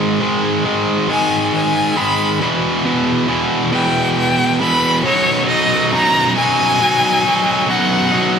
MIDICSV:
0, 0, Header, 1, 3, 480
1, 0, Start_track
1, 0, Key_signature, 5, "major"
1, 0, Tempo, 880540
1, 1312, Time_signature, 6, 3, 24, 8
1, 4575, End_track
2, 0, Start_track
2, 0, Title_t, "Violin"
2, 0, Program_c, 0, 40
2, 602, Note_on_c, 0, 80, 91
2, 820, Note_off_c, 0, 80, 0
2, 841, Note_on_c, 0, 80, 93
2, 1072, Note_on_c, 0, 83, 96
2, 1080, Note_off_c, 0, 80, 0
2, 1312, Note_off_c, 0, 83, 0
2, 2033, Note_on_c, 0, 79, 89
2, 2255, Note_off_c, 0, 79, 0
2, 2277, Note_on_c, 0, 79, 93
2, 2497, Note_off_c, 0, 79, 0
2, 2515, Note_on_c, 0, 83, 98
2, 2736, Note_off_c, 0, 83, 0
2, 2751, Note_on_c, 0, 73, 104
2, 2974, Note_off_c, 0, 73, 0
2, 2988, Note_on_c, 0, 75, 102
2, 3212, Note_off_c, 0, 75, 0
2, 3234, Note_on_c, 0, 82, 116
2, 3455, Note_off_c, 0, 82, 0
2, 3477, Note_on_c, 0, 80, 118
2, 4171, Note_off_c, 0, 80, 0
2, 4195, Note_on_c, 0, 78, 96
2, 4575, Note_off_c, 0, 78, 0
2, 4575, End_track
3, 0, Start_track
3, 0, Title_t, "Distorted electric guitar"
3, 0, Program_c, 1, 30
3, 0, Note_on_c, 1, 44, 93
3, 0, Note_on_c, 1, 51, 105
3, 0, Note_on_c, 1, 56, 116
3, 105, Note_off_c, 1, 44, 0
3, 109, Note_off_c, 1, 51, 0
3, 110, Note_off_c, 1, 56, 0
3, 111, Note_on_c, 1, 44, 83
3, 115, Note_on_c, 1, 51, 93
3, 117, Note_on_c, 1, 56, 103
3, 345, Note_off_c, 1, 44, 0
3, 348, Note_off_c, 1, 51, 0
3, 351, Note_off_c, 1, 56, 0
3, 352, Note_on_c, 1, 44, 83
3, 355, Note_on_c, 1, 51, 90
3, 358, Note_on_c, 1, 56, 97
3, 584, Note_off_c, 1, 44, 0
3, 589, Note_off_c, 1, 51, 0
3, 590, Note_on_c, 1, 44, 95
3, 593, Note_off_c, 1, 56, 0
3, 595, Note_on_c, 1, 51, 106
3, 599, Note_on_c, 1, 56, 92
3, 1063, Note_off_c, 1, 44, 0
3, 1067, Note_off_c, 1, 51, 0
3, 1070, Note_off_c, 1, 56, 0
3, 1070, Note_on_c, 1, 44, 84
3, 1073, Note_on_c, 1, 51, 86
3, 1076, Note_on_c, 1, 56, 93
3, 1296, Note_off_c, 1, 44, 0
3, 1298, Note_off_c, 1, 51, 0
3, 1300, Note_off_c, 1, 56, 0
3, 1313, Note_on_c, 1, 40, 92
3, 1316, Note_on_c, 1, 47, 102
3, 1317, Note_on_c, 1, 52, 103
3, 1545, Note_off_c, 1, 40, 0
3, 1547, Note_off_c, 1, 47, 0
3, 1552, Note_off_c, 1, 52, 0
3, 1552, Note_on_c, 1, 40, 90
3, 1554, Note_on_c, 1, 47, 98
3, 1559, Note_on_c, 1, 52, 93
3, 1779, Note_off_c, 1, 40, 0
3, 1784, Note_off_c, 1, 47, 0
3, 1785, Note_on_c, 1, 40, 84
3, 1788, Note_off_c, 1, 52, 0
3, 1791, Note_on_c, 1, 47, 91
3, 1794, Note_on_c, 1, 52, 100
3, 2022, Note_off_c, 1, 40, 0
3, 2024, Note_off_c, 1, 47, 0
3, 2027, Note_off_c, 1, 52, 0
3, 2028, Note_on_c, 1, 40, 103
3, 2031, Note_on_c, 1, 47, 98
3, 2033, Note_on_c, 1, 52, 102
3, 2502, Note_off_c, 1, 40, 0
3, 2506, Note_off_c, 1, 47, 0
3, 2508, Note_on_c, 1, 40, 89
3, 2510, Note_off_c, 1, 52, 0
3, 2513, Note_on_c, 1, 47, 86
3, 2517, Note_on_c, 1, 52, 99
3, 2735, Note_off_c, 1, 40, 0
3, 2737, Note_off_c, 1, 47, 0
3, 2739, Note_off_c, 1, 52, 0
3, 2748, Note_on_c, 1, 35, 96
3, 2753, Note_on_c, 1, 42, 93
3, 2756, Note_on_c, 1, 47, 101
3, 2760, Note_on_c, 1, 54, 102
3, 2762, Note_on_c, 1, 63, 102
3, 2989, Note_off_c, 1, 63, 0
3, 2992, Note_on_c, 1, 63, 73
3, 2997, Note_off_c, 1, 54, 0
3, 2999, Note_on_c, 1, 54, 70
3, 3002, Note_off_c, 1, 47, 0
3, 3004, Note_on_c, 1, 47, 65
3, 3220, Note_off_c, 1, 42, 0
3, 3227, Note_on_c, 1, 42, 82
3, 3232, Note_off_c, 1, 47, 0
3, 3235, Note_on_c, 1, 47, 90
3, 3238, Note_off_c, 1, 54, 0
3, 3240, Note_on_c, 1, 54, 82
3, 3242, Note_off_c, 1, 63, 0
3, 3244, Note_on_c, 1, 63, 82
3, 3464, Note_off_c, 1, 63, 0
3, 3466, Note_on_c, 1, 63, 74
3, 3470, Note_off_c, 1, 54, 0
3, 3477, Note_on_c, 1, 54, 70
3, 3481, Note_off_c, 1, 47, 0
3, 3483, Note_on_c, 1, 47, 67
3, 3703, Note_off_c, 1, 42, 0
3, 3709, Note_on_c, 1, 42, 84
3, 3711, Note_off_c, 1, 47, 0
3, 3713, Note_off_c, 1, 54, 0
3, 3714, Note_on_c, 1, 47, 91
3, 3719, Note_on_c, 1, 54, 90
3, 3720, Note_off_c, 1, 63, 0
3, 3722, Note_on_c, 1, 63, 89
3, 3943, Note_off_c, 1, 63, 0
3, 3945, Note_on_c, 1, 63, 73
3, 3948, Note_off_c, 1, 54, 0
3, 3954, Note_on_c, 1, 54, 71
3, 3960, Note_off_c, 1, 47, 0
3, 3962, Note_on_c, 1, 47, 62
3, 4181, Note_off_c, 1, 35, 0
3, 4183, Note_on_c, 1, 35, 97
3, 4184, Note_off_c, 1, 42, 0
3, 4190, Note_on_c, 1, 42, 96
3, 4191, Note_off_c, 1, 54, 0
3, 4192, Note_off_c, 1, 47, 0
3, 4194, Note_on_c, 1, 47, 110
3, 4197, Note_on_c, 1, 54, 108
3, 4199, Note_off_c, 1, 63, 0
3, 4201, Note_on_c, 1, 63, 116
3, 4420, Note_off_c, 1, 63, 0
3, 4422, Note_on_c, 1, 63, 81
3, 4427, Note_off_c, 1, 54, 0
3, 4433, Note_on_c, 1, 54, 75
3, 4437, Note_off_c, 1, 47, 0
3, 4439, Note_on_c, 1, 47, 68
3, 4575, Note_off_c, 1, 35, 0
3, 4575, Note_off_c, 1, 42, 0
3, 4575, Note_off_c, 1, 47, 0
3, 4575, Note_off_c, 1, 54, 0
3, 4575, Note_off_c, 1, 63, 0
3, 4575, End_track
0, 0, End_of_file